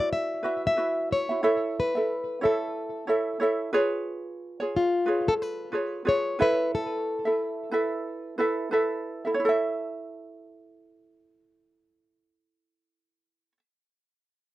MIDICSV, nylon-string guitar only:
0, 0, Header, 1, 2, 480
1, 0, Start_track
1, 0, Key_signature, 3, "major"
1, 0, Tempo, 662983
1, 1035, Time_signature, 4, 2, 24, 8
1, 10532, End_track
2, 0, Start_track
2, 0, Title_t, "Nylon-string guitar"
2, 0, Program_c, 0, 24
2, 0, Note_on_c, 0, 74, 98
2, 88, Note_off_c, 0, 74, 0
2, 91, Note_on_c, 0, 76, 103
2, 441, Note_off_c, 0, 76, 0
2, 484, Note_on_c, 0, 76, 115
2, 811, Note_off_c, 0, 76, 0
2, 814, Note_on_c, 0, 73, 112
2, 1298, Note_off_c, 0, 73, 0
2, 1301, Note_on_c, 0, 71, 97
2, 1738, Note_off_c, 0, 71, 0
2, 1775, Note_on_c, 0, 69, 74
2, 2694, Note_off_c, 0, 69, 0
2, 3450, Note_on_c, 0, 65, 81
2, 3825, Note_on_c, 0, 69, 99
2, 3835, Note_off_c, 0, 65, 0
2, 3861, Note_off_c, 0, 69, 0
2, 3924, Note_on_c, 0, 71, 93
2, 4403, Note_off_c, 0, 71, 0
2, 4406, Note_on_c, 0, 73, 97
2, 4645, Note_off_c, 0, 73, 0
2, 4647, Note_on_c, 0, 71, 97
2, 4883, Note_off_c, 0, 71, 0
2, 4885, Note_on_c, 0, 69, 96
2, 6289, Note_off_c, 0, 69, 0
2, 10532, End_track
0, 0, End_of_file